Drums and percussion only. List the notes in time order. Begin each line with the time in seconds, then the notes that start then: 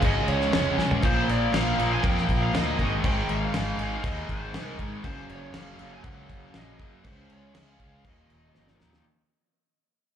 0.02 kick, cowbell, crash
0.28 crash
0.41 snare
0.52 snare, cowbell, crash
0.79 snare
0.91 floor tom
1.02 kick, cowbell, crash
1.29 crash
1.52 snare, cowbell, crash
1.79 crash
2.03 kick, cowbell, crash
2.17 snare
2.29 kick, crash
2.53 snare, cowbell, crash
2.79 kick, crash
3.04 kick, cowbell, crash
3.29 crash
3.54 snare, cowbell, crash
3.79 crash
4.04 kick, cowbell, crash
4.29 kick, crash
4.54 snare, cowbell, crash
4.79 kick, crash
5.04 kick, cowbell, crash
5.29 crash
5.54 snare, cowbell, crash
5.79 crash
6.04 kick, cowbell, crash
6.29 kick, crash
6.54 snare, cowbell, crash
6.79 kick, crash
7.04 kick, cowbell, crash
7.30 crash
7.55 snare, cowbell, crash
7.80 kick, crash
8.05 kick, cowbell, crash
8.30 crash
8.55 snare, cowbell
8.67 snare
8.80 snare
8.93 snare